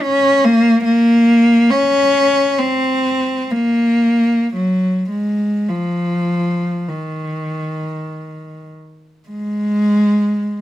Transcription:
0.02 0.44 C#4 loud
0.44 0.83 A#3 loud
0.85 1.70 A#3 loud
1.71 2.60 C#4 loud
2.59 3.51 C4 loud
3.51 4.53 A#3 medium
4.55 5.09 F#3 medium
5.10 5.68 G#3 medium
5.68 6.88 F3 medium
6.88 8.67 D#3 medium
9.29 10.61 G#3 medium

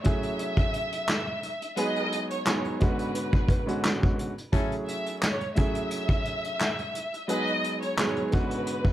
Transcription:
0.04 1.47 F#3 loud
0.04 1.48 A3 medium
0.04 1.48 C#4 medium
0.04 1.48 E4 medium
0.04 1.48 G#4 loud
0.04 1.73 E5 medium
0.04 kick loud
0.04 closed hi-hat medium
0.23 closed hi-hat medium
0.39 closed hi-hat medium
0.57 kick loud
0.57 closed hi-hat soft
0.73 closed hi-hat medium
0.92 closed hi-hat medium
1.08 snare loud
1.08 clap medium
1.08 closed hi-hat medium
1.43 closed hi-hat medium
1.62 closed hi-hat medium
1.76 2.41 F#3 medium
1.76 2.41 G#3 medium
1.76 2.41 B3 medium
1.76 2.41 D#4 medium
1.76 2.22 F#4 loud
1.76 2.22 G#4 loud
1.76 2.42 G#4 loud
1.76 2.22 B4 loud
1.76 2.28 D#5 loud
1.76 closed hi-hat loud
1.96 closed hi-hat soft
2.12 closed hi-hat medium
2.30 2.77 C#5 medium
2.30 closed hi-hat medium
2.45 2.80 F#3 loud
2.45 2.79 G#3 medium
2.45 2.80 B3 medium
2.45 2.81 D#4 medium
2.45 2.81 G#4 loud
2.45 snare loud
2.45 clap loud
2.45 closed hi-hat loud
2.65 closed hi-hat soft
2.80 3.61 G#2 medium
2.80 3.61 D3 medium
2.80 3.61 G#3 medium
2.80 3.61 B3 medium
2.80 3.61 C#4 medium
2.80 3.62 F#4 loud
2.80 3.81 B4 medium
2.80 kick medium
2.80 closed hi-hat medium
2.99 closed hi-hat medium
3.15 closed hi-hat medium
3.33 kick loud
3.48 kick loud
3.48 closed hi-hat medium
3.66 4.30 G#2 medium
3.66 4.30 D3 medium
3.66 4.30 G#3 medium
3.66 4.31 B3 medium
3.66 4.31 C#4 medium
3.66 4.31 F#4 loud
3.66 closed hi-hat medium
3.84 snare loud
3.84 clap medium
3.84 closed hi-hat medium
4.03 kick loud
4.19 closed hi-hat medium
4.38 closed hi-hat medium
4.52 5.33 F#3 medium
4.52 5.33 A3 medium
4.52 4.74 C#4 loud
4.52 5.33 C#4 medium
4.52 4.74 E4 loud
4.52 5.34 E4 medium
4.52 5.34 G#4 loud
4.52 4.74 A4 loud
4.52 kick loud
4.52 closed hi-hat loud
4.72 closed hi-hat soft
4.87 5.18 E5 medium
4.87 closed hi-hat medium
5.06 closed hi-hat medium
5.22 5.53 C#5 medium
5.22 snare loud
5.22 clap loud
5.22 closed hi-hat loud
5.41 closed hi-hat soft
5.55 6.99 F#3 loud
5.55 6.99 A3 medium
5.55 7.00 C#4 medium
5.55 7.00 E4 medium
5.55 7.00 G#4 loud
5.55 7.24 E5 medium
5.55 kick loud
5.55 closed hi-hat medium
5.75 closed hi-hat medium
5.91 closed hi-hat medium
6.09 kick loud
6.09 closed hi-hat soft
6.25 closed hi-hat medium
6.44 closed hi-hat medium
6.60 snare loud
6.60 clap medium
6.60 closed hi-hat medium
6.78 closed hi-hat soft
6.95 closed hi-hat medium
7.14 closed hi-hat medium
7.28 7.92 F#3 medium
7.28 7.92 G#3 medium
7.28 7.93 B3 medium
7.28 7.93 D#4 medium
7.28 7.51 F#4 medium
7.28 7.51 G#4 loud
7.28 7.93 G#4 loud
7.28 7.51 B4 loud
7.28 7.79 D#5 loud
7.28 closed hi-hat loud
7.47 closed hi-hat soft
7.64 closed hi-hat medium
7.82 8.29 C#5 medium
7.82 closed hi-hat medium
7.97 8.32 F#3 loud
7.97 8.31 G#3 medium
7.97 8.32 B3 medium
7.97 8.32 D#4 medium
7.97 8.33 G#4 loud
7.97 snare loud
7.97 clap loud
7.97 closed hi-hat loud
8.16 closed hi-hat soft
8.32 8.93 G#2 medium
8.32 8.93 D3 medium
8.32 8.93 G#3 medium
8.32 8.93 B3 medium
8.32 8.93 C#4 medium
8.32 8.93 F#4 loud
8.32 8.93 B4 medium
8.32 kick loud
8.32 closed hi-hat medium
8.51 closed hi-hat medium
8.67 closed hi-hat medium
8.85 kick loud

